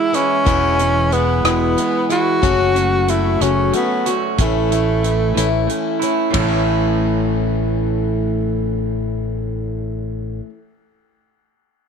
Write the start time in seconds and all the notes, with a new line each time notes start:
Already playing: E2 B2 E3 G#3 B3 E4
0.13 E3 G#3 B3 C#4 E4, closed hi-hat
0.45 E1 E2 B2 E3 G#3 B3 E4, kick, closed hi-hat
0.79 B2 E3 G#3 B3 E4, closed hi-hat
1.11 E3 G#3 B3 E4, closed hi-hat
1.44 E1 E2 B2 E3 G#3 B3 E4, cross-stick, closed hi-hat
1.77 E3 G#3 B3 E4, closed hi-hat
2.10 E3 G#3 B3 E4 F#4, closed hi-hat
2.42 F#1 F#2 C#3 F#3 A3 C#4 F#4, kick, closed hi-hat
2.75 C#3 F#3 A3 C#4 F#4, closed hi-hat
3.08 F#3 A3 C#4 E4 F#4, closed hi-hat
3.41 F#1 F#2 C#3 F#3 A3 C#4 F#4, closed hi-hat
3.73 F#3 A3 B3 C#4 F#4, closed hi-hat
4.06 F#3 A3 C#4 F#4, closed hi-hat
4.38 A1 A2 E3 A3 C#4 E4, kick, closed hi-hat
4.71 E3 A3 C#4 E4, closed hi-hat
5.04 E3 A3 C#4 E4, closed hi-hat
5.36 A1 A2 E3 A3 C#4 E4, closed hi-hat
5.69 E3 A3 C#4 E4, closed hi-hat
6.02 A3 C#4 E4, closed hi-hat
6.31 A1 A2 E3 A3 C#4 E4, kick, ride bell
6.37 E3 A3
6.44 C#4
6.48 E4